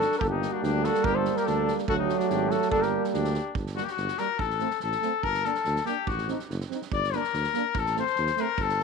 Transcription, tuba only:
0.22 0.45 G1 medium
0.63 0.86 D2 loud
1.05 1.28 G1 medium
1.47 1.70 D2 medium
1.88 2.11 D2 loud
2.30 2.53 G#1 loud
2.73 2.96 G1 medium
3.14 3.37 D2 loud
3.56 3.79 G1 medium
3.97 4.09 G1 loud
4.40 4.63 A1 medium
4.83 4.94 A1 loud
5.24 5.47 G1 medium
5.66 5.78 D2 loud
6.08 6.31 A1 medium
6.49 6.61 F#1 loud
6.92 7.15 G1 medium
7.34 7.45 D2 medium
7.76 7.99 A1 medium
8.18 8.29 D#2 loud
8.59 8.82 G1 medium

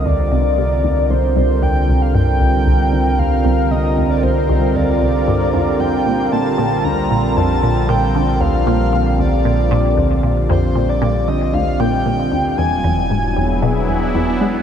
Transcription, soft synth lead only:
0.06 1.12 D5 loud
1.10 1.36 C5 medium
1.36 1.64 C5 medium
1.63 2.03 G5 medium
2.02 2.14 F5 medium
2.15 3.20 G5 loud
3.19 3.73 F5 loud
3.71 4.10 D#5 medium
4.10 4.25 D5 medium
4.23 4.77 C5 loud
4.75 5.81 D5 loud
5.80 6.32 G5 loud
6.32 6.86 A5 loud
6.84 7.38 A#5 loud
7.37 7.90 A5 loud
7.89 8.42 G5 loud
8.41 9.19 F5 loud
9.19 10.19 D5 loud
10.50 10.91 C5 medium
10.89 11.30 D5 medium
11.28 11.55 D#5 loud
11.54 11.81 F5 loud
11.80 12.57 G5 loud
12.58 14.10 G#5 loud

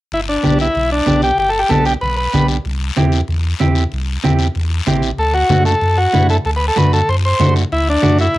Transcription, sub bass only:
0.12 0.38 G1 medium
0.44 0.70 B1 medium
0.76 1.01 B1 loud
1.06 1.32 B1 loud
1.38 1.64 G1 loud
1.70 1.96 B1 medium
2.02 2.28 B1 medium
2.34 2.59 B1 loud
2.65 2.91 C2 loud
2.97 3.23 E2 medium
3.29 3.54 E2 medium
3.61 3.86 E2 loud
3.93 4.18 C2 medium
4.25 4.50 E2 medium
4.56 4.81 E2 medium
4.87 5.12 A1 loud
5.18 5.44 D2 medium
5.50 5.75 F#2 medium
5.81 6.07 F#2 medium
6.14 6.39 F#2 loud
6.45 6.71 D2 medium
6.77 7.02 F#2 medium
7.08 7.34 F#2 loud
7.39 7.65 F#2 medium
7.72 7.97 D2 medium
8.03 8.29 F#2 medium

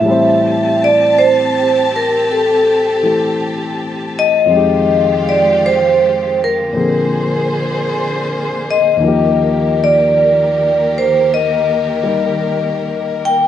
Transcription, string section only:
0.04 4.45 C4 medium
0.04 4.46 G4 medium
0.04 4.46 A5 medium
4.50 6.72 D#3 medium
4.50 6.72 G#3 medium
4.50 6.72 F4 medium
4.50 6.72 G4 medium
6.76 9.00 D3 medium
6.76 13.48 A#3 medium
6.76 9.00 G#4 medium
6.76 9.00 C5 medium
9.02 13.48 D#3 medium
9.02 13.48 G4 medium
9.02 13.48 A#4 medium

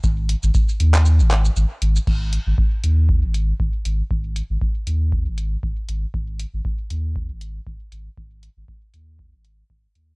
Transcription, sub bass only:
0.04 0.35 G#1 loud
0.43 0.50 G#1 loud
0.80 1.21 D#2 medium
1.20 1.50 G#1 loud
1.56 1.65 G#1 loud
1.82 1.99 G#1 medium
2.07 2.38 G#1 loud
2.47 2.54 G#1 loud
2.83 3.25 D#2 medium
3.23 3.53 G#1 loud
3.60 3.69 G#1 loud
3.85 4.02 G#1 medium
4.11 4.42 G#1 loud
4.50 4.57 G#1 loud
4.87 5.28 D#2 medium
5.27 5.56 G#1 loud
5.63 5.72 G#1 loud
5.89 6.05 G#1 medium
6.14 6.45 G#1 medium
6.54 6.61 G#1 loud
6.90 7.31 D#2 medium
7.30 7.60 G#1 loud
7.67 7.75 G#1 loud
7.92 8.09 G#1 medium
8.17 8.48 G#1 medium
8.57 8.64 G#1 loud
8.94 9.35 D#2 medium
9.33 9.63 G#1 loud
9.70 9.87 G#1 loud
9.95 10.12 D#2 medium

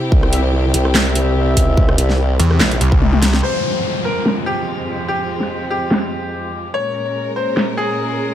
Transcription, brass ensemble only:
0.33 0.43 C4 medium
0.33 0.43 G4 medium
0.33 0.43 E5 loud
0.85 1.96 C4 medium
0.85 1.96 G4 medium
0.85 1.96 E5 loud
1.98 2.14 C4 medium
1.98 2.14 G4 medium
1.98 2.14 E5 medium
2.51 2.60 C4 medium
2.51 2.60 G4 medium
2.51 2.60 E5 medium

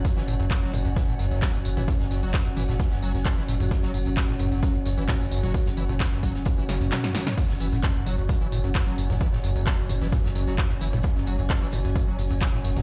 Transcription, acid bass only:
0.04 0.09 F#2 loud
0.17 0.23 E3 loud
0.27 0.34 A2 loud
0.40 0.46 F#2 loud
0.50 0.60 F#2 medium
0.62 0.71 F#3 medium
0.73 0.77 F#2 medium
0.85 0.89 F#2 loud
0.96 1.03 E3 loud
1.08 1.14 A2 loud
1.19 1.26 F#2 loud
1.31 1.40 F#2 medium
1.42 1.52 F#3 medium
1.54 1.58 F#2 medium
1.65 1.69 F#2 loud
1.77 1.83 E3 loud
1.88 1.95 A2 loud
2.00 2.06 F#2 loud
2.11 2.21 F#2 medium
2.23 2.32 F#3 medium
2.34 2.38 F#2 medium
2.46 2.49 F#2 loud
2.57 2.63 E3 loud
2.69 2.75 A2 loud
2.80 2.86 F#2 loud
2.92 3.01 F#2 medium
3.02 3.12 F#3 medium
3.15 3.18 F#2 medium
3.25 3.29 F#2 loud
3.37 3.43 E3 loud
3.48 3.55 A2 loud
3.60 3.66 F#2 loud
3.71 3.81 F#2 medium
3.83 3.92 F#3 medium
3.94 3.98 F#2 medium
4.06 4.10 F#2 loud
4.17 4.24 E3 loud
4.29 4.35 A2 loud
4.40 4.46 F#2 loud
4.52 4.61 F#2 medium
4.63 4.73 F#3 medium
4.75 4.78 F#2 medium
4.86 4.90 F#2 loud
4.97 5.04 E3 loud
5.08 5.15 A2 loud
5.20 5.27 F#2 loud
5.31 5.41 F#2 medium
5.43 5.52 F#3 medium
5.54 5.58 F#2 medium
5.66 5.70 F#2 loud
5.77 5.84 E3 loud
5.89 5.95 A2 loud
6.00 6.07 F#2 loud
6.12 6.21 F#2 medium
6.23 6.33 F#3 medium
6.35 6.39 F#2 medium
6.46 6.50 F#2 loud
6.58 6.64 E3 medium
6.69 6.79 C#3 loud
6.81 6.87 F#2 loud
6.92 7.05 B2 medium
7.04 7.16 F#2 medium
7.15 7.28 F#3 medium
7.27 7.36 F#2 loud
7.38 7.42 F#2 medium
7.50 7.53 F#2 loud
7.60 7.67 E3 loud
7.72 7.78 A2 loud
7.83 7.90 F#2 loud
7.95 8.04 F#2 medium
8.06 8.16 F#3 medium
8.18 8.22 F#2 medium
8.29 8.33 F#2 loud
8.41 8.47 E3 loud
8.52 8.59 A2 loud
8.64 8.70 F#2 loud
8.75 8.85 F#2 medium
8.87 8.96 F#3 medium
8.98 9.02 F#2 medium
9.10 9.13 F#2 loud
9.21 9.27 E3 loud
9.33 9.39 A2 loud
9.44 9.50 F#2 loud
9.56 9.65 F#2 medium
9.67 9.77 F#3 medium
9.79 9.82 F#2 medium
9.89 9.93 F#2 loud
10.01 10.07 E3 loud
10.12 10.19 A2 loud
10.24 10.30 F#2 loud
10.35 10.45 F#2 medium
10.47 10.56 F#3 medium
10.58 10.62 F#2 medium
10.70 10.74 F#2 loud
10.81 10.88 E3 loud
10.93 10.99 A2 loud
11.04 11.11 F#2 loud
11.16 11.25 F#2 medium
11.27 11.37 F#3 medium
11.39 11.43 F#2 medium
11.50 11.54 F#2 loud
11.62 11.68 E3 loud
11.73 11.79 A2 loud
11.85 11.91 F#2 loud
11.95 12.05 F#2 medium
12.07 12.16 F#3 medium
12.18 12.22 F#2 medium
12.30 12.34 F#2 loud
12.41 12.48 E3 loud
12.53 12.59 A2 loud
12.64 12.71 F#2 loud
12.76 12.82 F#2 medium

